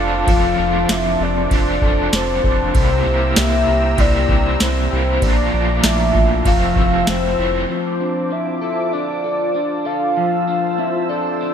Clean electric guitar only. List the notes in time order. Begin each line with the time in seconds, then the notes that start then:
Already playing: F3 C4 D4 A4
0.27 F3
0.58 D4
0.89 C4
1.20 A4
1.51 D4
1.82 A4
2.13 D4
2.44 A4
2.75 C3
3.06 E4
3.37 A#3
3.67 G4
3.98 E4
4.29 G4
4.60 E4
4.91 G4
5.21 A#2
5.53 D4
5.84 A3
6.14 F4
6.46 F3
6.77 E4
7.08 C4
7.38 E4
7.69 F3
8.00 D4
8.30 C4
8.61 A4
8.93 D4
9.24 A4
9.54 D4
9.85 A4
10.17 F3
10.48 D4
10.78 C4
11.09 A4
11.41 D4